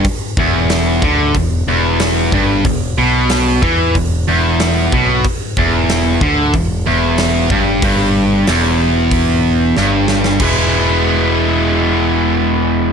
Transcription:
0.05 kick, open hi-hat
0.37 picked electric bass E1, overdriven electric guitar E2, kick
0.69 snare, open hi-hat
1.02 picked electric bass D2, overdriven electric guitar D3, kick
1.35 picked electric bass E1, overdriven electric guitar E2, kick, open hi-hat
1.67 picked electric bass E1, overdriven electric guitar E2
1.99 snare, open hi-hat
2.32 picked electric bass G1, overdriven electric guitar G2, kick
2.64 picked electric bass E1, overdriven electric guitar E2, kick, open hi-hat
2.98 picked electric bass B1, overdriven electric guitar B2
3.29 snare, open hi-hat
3.62 picked electric bass E2, overdriven electric guitar E3, kick
3.95 picked electric bass E1, overdriven electric guitar E2, kick, open hi-hat
4.27 picked electric bass E1, overdriven electric guitar E2
4.59 snare, open hi-hat
4.92 picked electric bass B1, overdriven electric guitar B2, kick
5.24 kick, open hi-hat
5.57 picked electric bass E1, overdriven electric guitar E2, kick
5.89 snare, open hi-hat
6.21 picked electric bass D2, overdriven electric guitar D3, kick
6.54 picked electric bass E1, overdriven electric guitar E2, kick, open hi-hat
6.87 picked electric bass E1, overdriven electric guitar E2
7.18 snare, open hi-hat
7.50 picked electric bass G1, overdriven electric guitar G2, kick
7.82 picked electric bass G1, overdriven electric guitar G2, kick, open hi-hat
8.47 picked electric bass E1, overdriven electric guitar E2, snare, open hi-hat
9.11 kick, open hi-hat
9.77 picked electric bass G1, overdriven electric guitar G2, snare
10.08 snare
10.24 snare
10.40 picked electric bass E1, overdriven electric guitar E3 G#3 B3, kick, crash
10.44 overdriven electric guitar E4

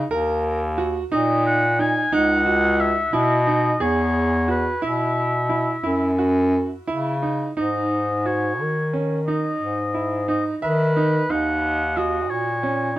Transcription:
0.11 bass clarinet D#2, grand piano A#4
0.78 grand piano F#4
1.12 bass clarinet A#2, grand piano D#4, oboe D#5
1.47 oboe F#5
1.79 grand piano D#4, oboe G#5
2.12 bass clarinet C#2, grand piano D#4, oboe F#5
2.46 grand piano F#4
2.81 oboe E5
3.13 bass clarinet B2, grand piano E4, oboe D#5
3.47 grand piano D#4
3.80 bass clarinet E2, grand piano G#4, oboe C#5
4.48 grand piano F#4, oboe B4
4.82 bass clarinet B2, grand piano E4, oboe E5
5.49 grand piano E4
5.83 bass clarinet F#2, grand piano E4
6.18 grand piano F#4
6.87 bass clarinet C#3, grand piano E4
7.22 grand piano D#4
7.57 bass clarinet G#2, grand piano D#4, oboe D#5
8.25 grand piano F#4, oboe C#5
8.61 bass clarinet D#3
8.93 grand piano C#4
9.27 grand piano D#4, oboe D#5
9.61 bass clarinet G#2
9.94 grand piano E4
10.28 grand piano D#4, oboe D#5
10.62 bass clarinet D#3, oboe B4, grand piano E5
10.97 grand piano D#4
11.30 bass clarinet D#2, grand piano D#4, oboe F#5
11.97 grand piano F#4, oboe D#5
12.30 bass clarinet A#2, oboe C#5
12.63 grand piano C#4

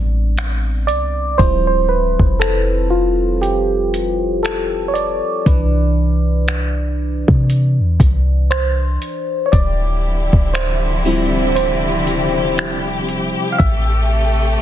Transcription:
Already playing: 808-style bass A1
0.38 finger snap, closed hi-hat
0.87 808-style bass C2, fm electric piano D5, closed hi-hat
1.38 808-style bass D1, fm electric piano F3 G3 C4 E4 C5, kick, closed hi-hat
1.67 fm electric piano C5
1.89 fm electric piano B4
2.19 808-style bass F1, kick
2.40 fm electric piano A4, finger snap, closed hi-hat
2.90 fm electric piano F4
3.42 fm electric piano G4, closed hi-hat
3.94 closed hi-hat
4.43 fm electric piano A4, finger snap, closed hi-hat
4.88 fm electric piano C#5
4.94 fm electric piano D5, closed hi-hat
5.46 808-style bass C2, fm electric piano E3 D4 B4, kick, closed hi-hat
6.48 finger snap, closed hi-hat
7.28 808-style bass C3, kick
7.50 closed hi-hat
7.79 808-style bass E2
8.00 808-style bass C2, kick, closed hi-hat
8.51 fm electric piano C5, finger snap, closed hi-hat
9.02 closed hi-hat
9.46 fm electric piano C#5
9.52 808-style bass D1, string section C3 D3 F3 E4 G4, fm electric piano D5, kick, closed hi-hat
10.33 808-style bass D1, kick
10.53 fm electric piano C5, finger snap, closed hi-hat
11.05 fm electric piano F3 G3 C4 E4
11.55 fm electric piano C5, closed hi-hat
12.07 closed hi-hat
12.58 finger snap, closed hi-hat
13.09 closed hi-hat
13.52 fm electric piano F5
13.58 808-style bass A1, string section A3, fm electric piano E5, kick, closed hi-hat

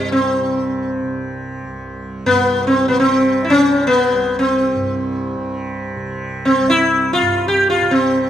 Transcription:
Already playing: tanpura C2 G2 C3
0.12 sitar C4
0.41 tanpura C3
1.03 tanpura C3
1.65 tanpura C2
2.25 tanpura G2, sitar B3
2.67 sitar C4
2.88 tanpura C3, sitar B3
3.00 sitar C4
3.45 sitar E4
3.50 tanpura C3, sitar C#4
3.87 sitar B3
4.12 tanpura C2
4.39 sitar C4
4.75 tanpura G2
5.37 tanpura C3
5.96 tanpura C3
6.45 sitar C4
6.60 tanpura C2
6.70 sitar E4
7.13 sitar F4
7.22 tanpura G2
7.48 sitar G4
7.70 sitar F4
7.82 tanpura C3
7.91 sitar C4

